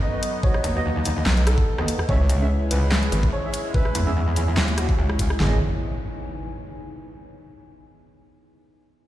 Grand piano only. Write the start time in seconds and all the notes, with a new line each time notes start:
0.02 D#5
0.43 C#5
1.47 A4
2.09 C#5
2.71 B4
3.33 C#5
3.74 B4
4.78 F#4
5.40 G#4